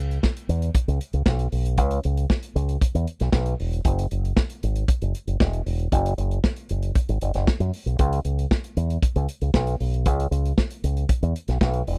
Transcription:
Already playing: C#2
0.11 closed hi-hat
0.23 kick, snare
0.36 closed hi-hat
0.49 E2, closed hi-hat
0.62 closed hi-hat
0.74 kick, closed hi-hat
0.88 C#2, closed hi-hat
1.01 closed hi-hat
1.13 C#2, closed hi-hat
1.26 B1, kick, snare
1.39 closed hi-hat
1.52 B1, open hi-hat
1.65 closed hi-hat
1.77 C#2, kick, closed hi-hat
1.91 closed hi-hat
2.03 C#2, closed hi-hat
2.17 closed hi-hat
2.30 kick, snare
2.42 closed hi-hat
2.56 C#2, closed hi-hat
2.69 closed hi-hat
2.81 kick, closed hi-hat
2.95 E2, closed hi-hat
3.07 closed hi-hat
3.20 B1, snare, closed hi-hat
3.32 B1, kick, snare
3.46 closed hi-hat
3.59 E1, open hi-hat
3.73 closed hi-hat
3.85 F#1, kick, closed hi-hat
3.99 closed hi-hat
4.11 F#1, closed hi-hat
4.25 closed hi-hat
4.36 kick, snare
4.49 closed hi-hat
4.63 G#1, closed hi-hat
4.75 closed hi-hat
4.88 kick, closed hi-hat
5.01 F#1, closed hi-hat
5.15 closed hi-hat
5.27 F#1, closed hi-hat
5.40 E1, kick, snare
5.53 closed hi-hat
5.66 E1, open hi-hat
5.79 closed hi-hat
5.92 F#1, kick, closed hi-hat
6.06 closed hi-hat
6.18 F#1, closed hi-hat
6.31 closed hi-hat
6.44 kick, snare
6.56 closed hi-hat
6.69 F#1, closed hi-hat
6.82 closed hi-hat
6.95 kick, closed hi-hat
7.09 G#1, closed hi-hat
7.21 F#1, closed hi-hat
7.34 F#1, snare, closed hi-hat
7.47 kick, snare
7.60 F#2, closed hi-hat
7.73 open hi-hat
7.86 B1, closed hi-hat
7.99 C#2, kick, closed hi-hat
8.12 closed hi-hat
8.25 C#2, closed hi-hat
8.39 closed hi-hat
8.51 kick, snare
8.64 closed hi-hat
8.77 E2, closed hi-hat
8.90 closed hi-hat
9.02 kick, closed hi-hat
9.16 C#2, closed hi-hat
9.28 closed hi-hat
9.41 C#2, closed hi-hat
9.54 B1, kick, snare
9.67 closed hi-hat
9.80 B1, open hi-hat
9.94 closed hi-hat
10.05 C#2, kick, closed hi-hat
10.20 closed hi-hat
10.31 C#2, closed hi-hat
10.45 closed hi-hat
10.58 kick, snare
10.70 closed hi-hat
10.84 C#2, closed hi-hat
10.97 closed hi-hat
11.09 kick, closed hi-hat
11.23 E2, closed hi-hat
11.36 closed hi-hat
11.48 B1, snare, closed hi-hat
11.61 B1, kick, snare
11.73 closed hi-hat
11.87 E1, open hi-hat

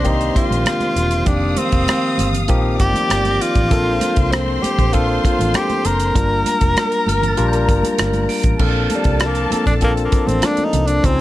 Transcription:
Already playing: C2 C3 A#3 C4 D4 G4 C5 C6 A#6 C7
0.04 D#3 A#3 C4 D#4 G4 D5, kick, closed hi-hat
0.21 closed hi-hat
0.35 F4, kick, cross-stick, closed hi-hat, muted conga
0.50 A#1, closed hi-hat, high conga
0.66 cross-stick, closed hi-hat, muted conga, high conga
0.80 closed hi-hat, high conga
0.96 E1, closed hi-hat, muted conga
1.11 closed hi-hat
1.25 F1 D#3 F3 A#3 C4 D4 G4 F5 D#6, kick, closed hi-hat, muted conga, low conga
1.56 C4, closed hi-hat, muted conga, high conga
1.72 F1, kick, closed hi-hat
1.87 cross-stick, closed hi-hat, muted conga, high conga
2.18 G1, closed hi-hat, muted conga, high conga
2.33 closed hi-hat, low conga
2.48 A#1 F3 A#3 C4 D#4 G4, kick, closed hi-hat, muted conga
2.79 G1 G4 D5 D6, kick, cross-stick, closed hi-hat, muted conga
2.94 closed hi-hat, high conga
3.10 G1 G6, cross-stick, closed hi-hat, high conga
3.25 closed hi-hat, high conga
3.31 A#6
3.41 F4, closed hi-hat, muted conga
3.55 A1, kick, closed hi-hat
3.70 A#1 F3 A#3 C4 D4 A4 C5 C6, kick, closed hi-hat, muted conga, low conga
4.01 closed hi-hat, muted conga, high conga
4.16 C2, kick, closed hi-hat
4.32 C4, cross-stick, closed hi-hat, muted conga, high conga
4.62 G4, muted fingered electric bass stroke, closed hi-hat, muted conga, high conga
4.78 A#1, kick, closed hi-hat, low conga
4.92 F3 A#3 C4 D4 F4 A4, kick, closed hi-hat, muted conga
5.24 F4, muted fingered electric bass stroke, kick, closed hi-hat, muted conga
5.39 A1, closed hi-hat, high conga
5.54 G4 G6, cross-stick, closed hi-hat, high conga
5.70 closed hi-hat, high conga
5.85 F#1 A#4, closed hi-hat, muted conga
6.00 closed hi-hat
6.14 G1 G3 A#3 D4 F4 A#4 A#5, kick, closed hi-hat, low conga
6.46 closed hi-hat, muted conga, high conga
6.61 F1, kick, closed hi-hat
6.77 cross-stick, closed hi-hat, muted conga, high conga
6.92 closed hi-hat
7.07 G1 F6, closed hi-hat, high conga
7.22 closed hi-hat, low conga
7.28 A6
7.37 A#1 G3 A#3 D4 F4 A#4, closed hi-hat
7.48 G6
7.53 closed hi-hat
7.68 G1, kick, closed hi-hat, muted conga
7.83 closed hi-hat, high conga
7.98 G1, cross-stick, closed hi-hat, muted conga, high conga
8.13 closed hi-hat, high conga
8.29 D7, open hi-hat, muted conga
8.43 A1, kick, closed hi-hat
8.59 A#1 F3 A#3 C4 D4 A4 A5 F6, kick, crash, muted conga, low conga
8.90 closed hi-hat, muted conga, high conga
8.95 G3
9.04 C2, kick, closed hi-hat
9.20 cross-stick, closed hi-hat, muted conga
9.26 A#3
9.35 closed hi-hat
9.51 F3 A#3 C4 D4 A4, muted fingered electric bass stroke, closed hi-hat, muted conga, high conga
9.66 A#1 D4, kick, closed hi-hat, low conga
9.81 F3 A#3 C4 D4 A4, kick, closed hi-hat
9.97 closed hi-hat
10.05 A#3
10.12 muted fingered electric bass stroke, kick, closed hi-hat
10.26 A1 C4, closed hi-hat, high conga
10.42 D4, cross-stick, closed hi-hat, muted conga, high conga
10.57 closed hi-hat, high conga
10.64 D#4
10.73 C2, closed hi-hat, muted conga, low conga
10.87 D4, closed hi-hat
11.03 C#2 F3 G#3 C4 C#4 D#4 G#4 C5 G#5, kick, closed hi-hat, low conga

